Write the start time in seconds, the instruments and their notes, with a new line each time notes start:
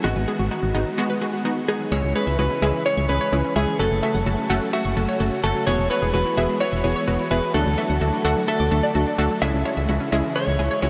Already playing: string machine F#4
0.04 fm bass G#1, string machine D#3 G#3 B3, synth pluck G#3 B3 F#4, clean electric guitar F#4, synth arpeggio sound D#5
0.16 fm bass G#1, synth arpeggio sound B4
0.28 synth pluck G#3 B3 G#4, synth arpeggio sound G#4
0.39 fm bass G#1, synth arpeggio sound F#4
0.51 synth pluck G#3 B3 F#4, synth arpeggio sound D#4
0.63 fm bass G#1, synth arpeggio sound B3
0.74 fm bass G#1, synth arpeggio sound G#3, synth pluck G#3 B3 D#4
0.86 synth arpeggio sound F#3
0.98 synth pluck G#3 B3 F#4, synth arpeggio sound D#5
1.10 synth arpeggio sound B4
1.21 synth pluck G#3 B3 F#4, synth arpeggio sound G#4
1.33 synth arpeggio sound F#4
1.45 synth pluck G#3 B3 F#4, synth arpeggio sound D#4
1.57 synth arpeggio sound B3
1.68 synth arpeggio sound G#3, synth pluck G#3 B3 D#4, clean electric guitar G#4
1.80 synth arpeggio sound F#3
1.92 fm bass C#2, string machine C#3 E3 G#3 E4, synth pluck G#3 C#4 E4 G#4, clean electric guitar C#5, synth arpeggio sound E6
2.04 fm bass C#2
2.15 synth pluck G#3 C#4 E4 G#4, clean electric guitar B4, analog polysynth C#5
2.27 fm bass C#2, synth arpeggio sound E5
2.39 fm bass C#2, synth pluck G#3 C#4 E4 F#4, synth arpeggio sound E4, clean electric guitar B4
2.50 synth arpeggio sound C#4
2.62 fm bass C#2, synth pluck G#3 C#4 E4 G#4, synth arpeggio sound G#3, analog polysynth E5
2.74 synth arpeggio sound E3
2.86 synth pluck G#3 C#4 E4 G#4, clean electric guitar C#5, analog polysynth C#5
2.97 fm bass C#2, synth arpeggio sound C#6
3.09 fm bass C#2, synth pluck G#3 C#4 E4 G#4, clean electric guitar B4, synth arpeggio sound G#5
3.21 analog polysynth C#5
3.33 fm bass C#2, synth pluck G#3 C#4 E4 G#4, synth arpeggio sound E4
3.44 synth arpeggio sound C#4
3.56 fm bass C#2, synth arpeggio sound G#3, synth pluck G#3 C#4 E4 G#4, clean electric guitar G#4, analog polysynth E5
3.68 synth arpeggio sound E3
3.79 fm bass F#1, string machine F#3 A3 F#4, synth pluck A3 C#4 F#4 A4, clean electric guitar A4, synth arpeggio sound F#6
3.91 fm bass F#1
4.03 synth pluck A3 C#4 F#4 A4, analog polysynth E5
4.15 fm bass F#1, synth arpeggio sound F#5
4.26 fm bass F#1, synth pluck A3 C#4 F#4 A4, synth arpeggio sound F#4
4.38 synth arpeggio sound C#4
4.50 fm bass F#1, synth arpeggio sound A3, synth pluck A3 C#4 F#4 A4, analog polysynth F#5
4.62 synth arpeggio sound F#3
4.73 synth pluck A3 C#4 F#4 A4, clean electric guitar F#4, analog polysynth E5
4.85 fm bass F#1, synth arpeggio sound C#6
4.97 fm bass F#1, synth pluck A3 C#4 F#4 A4, synth arpeggio sound A5
5.08 analog polysynth C#5
5.20 fm bass F#1, synth pluck A3 C#4 F#4 A4, synth arpeggio sound F#4
5.32 synth arpeggio sound C#4
5.43 fm bass F#1, synth arpeggio sound A3, synth pluck A3 C#4 F#4 A4, clean electric guitar A4
5.55 synth arpeggio sound F#3
5.67 fm bass E1, string machine E3 G#3 B3 F#4, synth pluck B3 E4 F#4 G#4, clean electric guitar C#5, synth arpeggio sound F#5
5.79 fm bass E1
5.90 synth pluck B3 E4 F#4 B4, clean electric guitar B4, analog polysynth C#5
6.02 fm bass E1, synth arpeggio sound G#4
6.14 fm bass E1, synth pluck B3 E4 F#4 G#4, synth arpeggio sound F#4, clean electric guitar B4
6.25 synth arpeggio sound E4
6.37 fm bass E1, synth arpeggio sound B3, synth pluck B3 E4 F#4 G#4, analog polysynth E5
6.49 synth arpeggio sound G#3
6.60 synth pluck B3 E4 F#4 B4, clean electric guitar C#5, analog polysynth C#5
6.72 fm bass E1, synth arpeggio sound E5
6.84 fm bass E1, synth pluck B3 E4 F#4 G#4, synth arpeggio sound B4, clean electric guitar C#5
6.96 analog polysynth C#5
7.07 fm bass E1, synth pluck B3 E4 F#4 B4, synth arpeggio sound F#4
7.19 synth arpeggio sound E4
7.31 fm bass E1, synth pluck B3 E4 F#4 G#4, synth arpeggio sound B3, clean electric guitar B4, analog polysynth E5
7.43 synth arpeggio sound G#3
7.54 fm bass D2, string machine D3 F#3 A3, synth pluck A3 D4 F#4 A4, clean electric guitar A4, synth arpeggio sound F#6
7.66 fm bass D2
7.78 synth pluck A3 D4 F#4 A4, analog polysynth E5
7.90 fm bass D2, synth arpeggio sound F#5
8.01 fm bass D2, synth pluck A3 D4 F#4 A4, synth arpeggio sound F#4
8.13 synth arpeggio sound D4
8.24 fm bass D2, synth pluck A3 D4 F#4 A4, synth arpeggio sound A3, analog polysynth F#5
8.36 synth arpeggio sound F#3
8.48 synth pluck A3 D4 F#4 A4, clean electric guitar A4, analog polysynth E5
8.60 fm bass D2, synth arpeggio sound D6
8.71 fm bass D2, synth pluck A3 D4 F#4 A4, synth arpeggio sound A5
8.83 analog polysynth D5
8.95 fm bass D2, synth pluck A3 D4 F#4 A4, synth arpeggio sound F#4
9.07 synth arpeggio sound D4
9.18 fm bass D2, synth pluck A3 D4 F#4 A4, synth arpeggio sound A3
9.30 synth arpeggio sound F#3
9.42 fm bass C#2, string machine C#3 E3 G#3 E4, synth pluck G#3 C#4 E4 G#4, clean electric guitar E5, synth arpeggio sound E6
9.54 fm bass C#2
9.65 synth pluck G#3 C#4 E4 G#4, analog polysynth C#5
9.77 fm bass C#2, synth arpeggio sound E5
9.89 fm bass C#2, synth pluck G#3 C#4 E4 F#4, synth arpeggio sound E4
10.00 synth arpeggio sound C#4
10.12 fm bass C#2, synth arpeggio sound G#3, synth pluck G#3 C#4 E4 G#4, analog polysynth E5
10.24 synth arpeggio sound E3
10.35 synth pluck G#3 C#4 E4 G#4, analog polysynth C#5, clean electric guitar C#5
10.47 fm bass C#2, synth arpeggio sound C#6
10.59 fm bass C#2, synth pluck G#3 C#4 E4 G#4, synth arpeggio sound G#5
10.71 analog polysynth C#5
10.82 fm bass C#2, synth pluck G#3 C#4 E4 F#4, synth arpeggio sound E4, clean electric guitar C#5